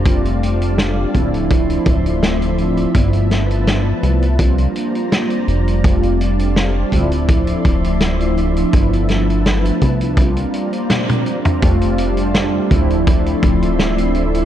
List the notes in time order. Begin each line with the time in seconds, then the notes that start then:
Already playing: F1 D5
0.04 G3 A3 C4 D4 F4 G4 F5 A5, kick, closed hi-hat
0.25 closed hi-hat
0.43 closed hi-hat
0.62 closed hi-hat
0.78 snare, closed hi-hat
1.13 D1 F3 A3 C4 D4 E4 E5 C6, kick, closed hi-hat
1.34 closed hi-hat
1.51 kick, closed hi-hat
1.70 closed hi-hat
1.86 D1, kick, closed hi-hat
2.06 closed hi-hat
2.23 snare, closed hi-hat
2.42 closed hi-hat
2.58 closed hi-hat
2.77 closed hi-hat
2.93 G1 F3 A3 B3 D4 E4 B4 A5, kick, closed hi-hat
3.13 closed hi-hat
3.31 snare, closed hi-hat
3.51 closed hi-hat
3.67 snare, closed hi-hat
4.03 C2, closed hi-hat
4.22 closed hi-hat
4.38 G3 A#3 C4 D4 F4 C5 D5 A#5, kick, closed hi-hat
4.58 closed hi-hat
4.76 closed hi-hat
4.95 closed hi-hat
5.12 snare, closed hi-hat
5.30 closed hi-hat
5.48 F1, closed hi-hat
5.68 closed hi-hat
5.83 G3 A3 C4 D4 F4 G4 D5 F5 A5, kick, closed hi-hat
6.03 closed hi-hat
6.21 closed hi-hat
6.39 closed hi-hat
6.56 snare, closed hi-hat
6.91 D1 F3 A3 C4 D4 E4 E5 C6, kick, closed hi-hat
7.12 closed hi-hat
7.28 kick, closed hi-hat
7.47 closed hi-hat
7.65 D1, kick, closed hi-hat
7.84 closed hi-hat
8.01 snare, closed hi-hat
8.20 closed hi-hat
8.37 closed hi-hat
8.57 closed hi-hat
8.72 G1 F3 A3 B3 D4 E4 B4 A5, kick, closed hi-hat
8.93 closed hi-hat
9.09 snare, closed hi-hat
9.30 closed hi-hat
9.46 snare, closed hi-hat
9.65 closed hi-hat
9.81 C2, kick, closed hi-hat
10.01 closed hi-hat
10.16 G3 A#3 C4 D4 F4 C5 D5 A#5, kick, closed hi-hat
10.37 closed hi-hat
10.54 closed hi-hat
10.73 closed hi-hat
10.90 snare, closed hi-hat, high tom
11.10 closed hi-hat, high tom
11.26 closed hi-hat
11.45 closed hi-hat, mid tom
11.61 F1 G3 A3 C4 D4 F4 G4 D5 F5 A5, kick, closed hi-hat
11.81 closed hi-hat
11.98 closed hi-hat
12.17 closed hi-hat
12.34 snare, closed hi-hat
12.69 D1 F3 A3 C4 D4 E4 D5 E5 C6, kick, closed hi-hat
12.90 closed hi-hat
13.07 kick, closed hi-hat
13.26 closed hi-hat
13.43 D1, kick, closed hi-hat
13.62 closed hi-hat
13.79 snare, closed hi-hat
13.98 closed hi-hat
14.15 closed hi-hat
14.35 closed hi-hat